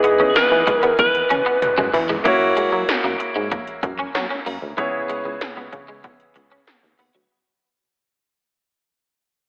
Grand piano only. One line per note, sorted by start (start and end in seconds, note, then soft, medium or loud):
0.00 0.63 E3 medium
0.00 2.21 B3 medium
0.00 2.21 D#4 medium
0.00 2.21 E4 medium
0.00 2.22 G#4 medium
0.00 2.22 D#5 medium
2.24 4.73 A#3 medium
2.24 4.74 E4 medium
2.24 4.74 F#4 medium
2.24 4.75 C#5 medium
4.77 5.69 C#3 medium
4.77 7.26 B3 medium
4.77 7.26 E4 medium
4.77 7.27 G#4 medium
4.77 7.27 C#5 medium